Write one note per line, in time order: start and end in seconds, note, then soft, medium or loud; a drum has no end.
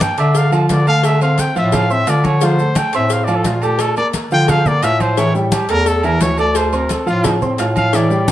0.00 0.12 G2 loud
0.00 0.12 A#3 medium
0.00 0.12 A#4 medium
0.00 0.19 G5 loud
0.00 0.12 A#5 medium
0.00 cowbell medium
0.00 high conga loud
0.00 low timbale medium
0.00 low agogo loud
0.00 maracas medium
0.18 0.66 D3 loud
0.18 0.46 D4 medium
0.18 0.46 D5 medium
0.18 0.38 E5 loud
0.18 0.47 D6 medium
0.18 cowbell medium
0.18 low agogo medium
0.18 maracas soft
0.35 0.53 F5 loud
0.35 cowbell loud
0.35 high conga soft
0.35 maracas medium
0.51 0.80 F3 medium
0.51 0.80 F4 medium
0.51 0.70 A4 medium
0.51 0.81 F5 loud
0.51 high conga soft
0.51 low agogo loud
0.51 maracas soft
0.69 1.50 D3 loud
0.69 0.87 D5 loud
0.69 cowbell medium
0.69 high conga medium
0.69 low timbale medium
0.69 maracas medium
0.87 1.15 A3 medium
0.87 1.15 A4 medium
0.87 1.07 F5 loud
0.87 1.15 A5 medium
0.87 high conga soft
0.87 low agogo medium
0.87 maracas soft
1.03 1.22 E5 loud
1.03 cowbell loud
1.03 high conga soft
1.03 low agogo loud
1.03 maracas medium
1.21 1.50 C4 medium
1.21 1.50 C5 medium
1.21 1.42 F5 loud
1.21 1.50 C6 medium
1.21 high conga soft
1.21 low agogo medium
1.21 maracas soft
1.38 1.57 G5 loud
1.38 cowbell medium
1.38 high conga medium
1.38 low timbale medium
1.38 low agogo medium
1.38 maracas medium
1.56 2.04 A2 loud
1.56 1.84 F3 loud
1.56 1.84 F4 loud
1.56 1.77 E5 loud
1.56 1.84 F5 medium
1.56 high conga soft
1.56 maracas soft
1.72 1.93 F5 loud
1.72 cowbell medium
1.72 high conga soft
1.72 low conga loud
1.72 low agogo loud
1.72 maracas medium
1.90 2.04 C4 medium
1.90 2.04 C5 medium
1.90 2.11 E5 loud
1.90 2.04 C6 medium
1.90 high conga soft
1.90 maracas soft
2.07 2.88 D3 loud
2.07 2.35 F4 medium
2.07 2.27 D5 loud
2.07 2.36 F5 medium
2.07 2.36 F6 medium
2.07 cowbell medium
2.07 high conga soft
2.07 low timbale medium
2.07 low agogo loud
2.07 maracas medium
2.24 2.46 C#5 loud
2.24 high conga medium
2.24 low agogo loud
2.24 maracas soft
2.41 2.56 F3 medium
2.41 2.56 F4 medium
2.41 2.79 C5 loud
2.41 2.56 F5 medium
2.41 cowbell loud
2.41 high conga soft
2.41 maracas medium
2.59 2.88 A3 medium
2.59 2.88 A4 medium
2.59 2.88 A5 medium
2.59 high conga soft
2.59 maracas soft
2.75 2.94 G5 loud
2.75 cowbell medium
2.75 high conga medium
2.75 low timbale medium
2.75 low agogo loud
2.75 maracas medium
2.93 3.42 A2 medium
2.93 3.22 C4 medium
2.93 3.22 C5 medium
2.93 3.14 E5 loud
2.93 3.22 C6 medium
2.93 cowbell medium
2.93 low agogo medium
2.93 maracas soft
3.10 3.26 F5 loud
3.10 cowbell loud
3.10 high conga soft
3.10 maracas medium
3.24 3.56 F3 medium
3.24 3.56 F4 medium
3.24 3.37 D5 loud
3.24 high conga soft
3.24 low agogo loud
3.24 maracas soft
3.29 3.57 F5 medium
3.35 3.48 A4 medium
3.44 3.99 A#2 medium
3.44 3.65 F4 medium
3.44 cowbell medium
3.44 high conga medium
3.44 low timbale loud
3.44 maracas medium
3.62 3.91 A3 medium
3.62 3.82 G4 loud
3.62 3.91 A4 medium
3.62 3.91 A5 medium
3.62 high conga soft
3.62 low agogo medium
3.62 maracas soft
3.79 3.97 A4 medium
3.79 cowbell loud
3.79 high conga soft
3.79 low agogo loud
3.79 maracas medium
3.97 4.25 A#3 medium
3.97 4.26 A#4 medium
3.97 4.08 D5 loud
3.97 4.26 A#5 medium
3.97 high conga soft
3.97 low agogo medium
3.97 maracas soft
4.13 cowbell medium
4.13 high conga medium
4.13 low timbale medium
4.13 low agogo medium
4.13 maracas medium
4.31 4.79 D3 loud
4.31 4.60 F3 medium
4.31 4.60 F4 loud
4.31 4.60 F5 loud
4.31 4.51 G5 loud
4.31 high conga soft
4.31 maracas soft
4.48 4.69 F5 loud
4.48 cowbell loud
4.48 high conga soft
4.48 low conga medium
4.48 low agogo loud
4.48 maracas medium
4.66 4.80 A#3 medium
4.66 4.80 A#4 medium
4.66 4.85 D5 loud
4.66 4.81 A#5 medium
4.66 high conga soft
4.66 low conga medium
4.66 maracas soft
4.83 5.63 A2 loud
4.83 5.11 F4 medium
4.83 5.02 E5 loud
4.83 5.12 F5 medium
4.83 5.12 F6 medium
4.83 cowbell medium
4.83 high conga soft
4.83 low timbale medium
4.83 low agogo medium
4.83 maracas medium
5.00 5.20 C5 loud
5.00 high conga medium
5.00 low agogo loud
5.00 maracas soft
5.17 5.32 E3 loud
5.17 5.32 E4 loud
5.17 5.35 C#5 loud
5.17 5.32 E5 medium
5.17 cowbell loud
5.17 high conga soft
5.17 maracas medium
5.35 5.63 G3 medium
5.35 5.52 E4 medium
5.35 5.63 G4 medium
5.35 5.63 G5 medium
5.35 high conga soft
5.35 maracas soft
5.52 5.71 G4 loud
5.52 cowbell medium
5.52 high conga loud
5.52 low timbale medium
5.52 low agogo loud
5.52 maracas medium
5.69 6.17 E2 loud
5.69 5.98 A3 medium
5.69 5.98 A4 medium
5.69 5.89 A#4 loud
5.69 5.98 A5 medium
5.69 cowbell medium
5.69 low agogo medium
5.69 maracas soft
5.86 6.06 A4 loud
5.86 cowbell medium
5.86 high conga soft
5.86 maracas medium
6.03 6.32 E3 medium
6.03 6.32 E4 medium
6.03 6.23 A#4 loud
6.03 6.32 E5 medium
6.03 high conga soft
6.03 low agogo loud
6.03 maracas soft
6.21 7.01 D2 medium
6.21 6.39 C#5 loud
6.21 cowbell medium
6.21 high conga medium
6.21 low timbale medium
6.21 maracas medium
6.38 6.66 A3 medium
6.38 6.67 A4 medium
6.38 6.58 D5 loud
6.38 6.67 A5 medium
6.38 high conga soft
6.38 low agogo medium
6.38 maracas soft
6.55 6.76 C5 medium
6.55 cowbell loud
6.55 high conga soft
6.55 low agogo loud
6.55 maracas medium
6.73 7.01 C4 medium
6.73 6.93 A#4 medium
6.73 7.01 C5 medium
6.73 7.01 C6 medium
6.73 high conga soft
6.73 low agogo medium
6.73 maracas soft
6.89 7.08 A4 medium
6.89 cowbell medium
6.89 high conga medium
6.89 low timbale medium
6.89 low agogo medium
6.89 maracas medium
7.06 7.55 A2 medium
7.06 7.35 F3 medium
7.06 7.35 F4 medium
7.06 7.40 F4 loud
7.06 7.35 F5 loud
7.06 high conga soft
7.06 maracas soft
7.24 cowbell loud
7.24 high conga soft
7.24 low conga medium
7.24 low agogo loud
7.24 maracas medium
7.42 7.56 C4 medium
7.42 7.56 C5 medium
7.42 7.56 C6 medium
7.42 high conga soft
7.42 low conga medium
7.42 maracas soft
7.58 8.32 A2 loud
7.58 7.87 F4 medium
7.58 7.87 F5 medium
7.58 7.88 F6 medium
7.58 cowbell medium
7.58 high conga soft
7.58 low timbale loud
7.58 low agogo medium
7.58 maracas medium
7.76 7.97 F5 loud
7.76 high conga medium
7.76 low agogo loud
7.76 maracas soft
7.93 8.07 E3 loud
7.93 8.08 E4 loud
7.93 8.31 D5 loud
7.93 8.08 E5 medium
7.93 cowbell loud
7.93 high conga soft
7.93 maracas medium
8.10 8.32 G3 medium
8.10 8.32 G4 medium
8.10 8.32 G5 medium
8.10 high conga soft
8.10 maracas soft
8.28 cowbell medium
8.28 high conga loud
8.28 high timbale medium
8.28 low agogo loud
8.28 maracas medium